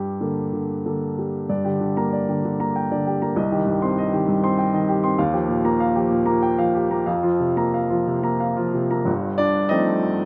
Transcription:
0.00 1.45 G2 soft
0.00 0.40 G3 soft
0.00 1.17 G4 medium
0.21 0.50 D3 soft
0.21 0.50 A#3 soft
0.21 0.50 A4 soft
0.53 0.84 D3 soft
0.85 1.14 D3 soft
0.85 1.14 A#3 soft
0.85 1.14 A4 soft
1.18 1.50 G3 soft
1.49 3.33 G2 soft
1.49 1.75 D5 soft
1.64 1.79 D3 soft
1.64 1.90 G4 soft
1.80 2.06 D3 soft
1.97 2.48 A#3 soft
1.97 2.22 A#5 soft
2.13 2.38 D5 soft
2.29 2.43 D3 soft
2.29 2.54 G4 soft
2.45 2.70 D3 soft
2.60 3.09 A#3 soft
2.60 2.85 A#5 soft
2.76 3.00 G5 soft
2.91 3.16 D3 soft
2.91 3.16 D5 soft
3.07 3.31 G4 soft
3.22 3.37 A#3 soft
3.22 3.37 A#5 soft
3.36 5.13 C2 soft
3.36 3.61 D#5 soft
3.52 3.76 D#3 soft
3.52 3.76 G4 soft
3.66 3.91 G2 soft
3.82 4.30 C4 soft
3.82 4.06 C6 soft
3.98 4.22 D#5 soft
4.13 4.37 D#3 soft
4.13 4.37 G4 soft
4.28 4.52 G2 soft
4.43 4.91 C4 soft
4.43 4.67 C6 medium
4.59 4.82 G5 soft
4.74 4.97 D#3 soft
4.74 4.97 D#5 soft
4.88 5.12 G4 soft
5.04 5.18 C4 soft
5.04 5.18 C6 soft
5.18 7.03 D#2 medium
5.18 5.42 F5 soft
5.33 5.57 F3 soft
5.33 5.57 G4 soft
5.49 5.72 A#2 soft
5.65 6.13 A#3 soft
5.65 5.88 A#5 soft
5.80 6.04 F5 soft
5.96 6.20 F3 soft
5.96 6.20 G4 soft
6.10 6.35 A#2 soft
6.26 6.77 A#3 soft
6.26 6.51 A#5 soft
6.42 6.68 G5 soft
6.58 6.84 F3 soft
6.58 6.84 F5 soft
6.75 7.01 G4 soft
6.91 7.07 A#3 soft
6.91 7.07 A#5 soft
7.06 9.04 F2 soft
7.06 7.34 F5 soft
7.23 7.50 F3 soft
7.23 7.50 F4 soft
7.40 7.67 C3 soft
7.57 8.11 A#3 soft
7.57 7.84 A#5 soft
7.74 8.01 F5 soft
7.90 8.18 F3 soft
7.90 8.18 F4 soft
8.07 8.34 C3 soft
8.23 8.78 A#3 soft
8.23 8.51 A#5 soft
8.40 8.68 F5 soft
8.57 8.85 F3 soft
8.57 8.85 F4 soft
8.74 9.01 C3 soft
8.91 9.08 A#3 soft
8.91 9.08 A#5 soft
9.05 9.68 G1 soft
9.05 9.69 G2 medium
9.38 9.69 D4 medium
9.38 9.71 D5 medium
9.69 10.25 F3 soft
9.69 10.25 A3 soft
9.69 10.25 C4 soft
9.69 10.25 D#4 medium
9.69 10.25 D#5 medium

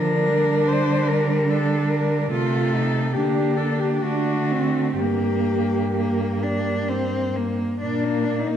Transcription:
0.00 2.27 D3 medium
0.00 0.29 F3 medium
0.00 1.47 D4 medium
0.00 0.69 A#4 medium
0.28 2.31 G3 medium
0.68 1.09 C5 medium
1.08 1.52 A#4 medium
1.49 2.30 D4 medium
1.49 1.91 A4 medium
1.90 2.31 A#4 medium
2.31 3.17 C3 medium
2.31 3.14 A3 medium
2.31 2.75 F4 medium
2.31 3.15 A4 medium
2.73 3.14 D#4 medium
3.13 4.05 D3 medium
3.13 4.04 A#3 medium
3.13 4.02 D4 medium
3.13 3.59 G4 medium
3.57 3.81 A4 medium
3.79 4.04 G4 medium
4.03 4.97 D3 medium
4.03 5.01 A3 soft
4.03 4.52 D4 medium
4.03 4.95 F#4 medium
4.51 5.01 C4 medium
4.96 7.57 G2 medium
4.96 5.87 A#3 medium
4.96 7.62 A#3 medium
4.96 6.85 G4 medium
5.95 6.44 A#3 medium
6.43 6.90 D4 medium
6.89 7.38 C4 medium
7.36 7.80 A#3 medium
7.81 8.57 A#2 medium
7.81 8.57 A#3 medium
7.81 8.06 D4 soft
7.81 8.41 D4 medium
8.04 8.26 A#3 soft
8.24 8.49 D4 soft
8.40 8.57 D#4 medium
8.47 8.57 A#3 soft

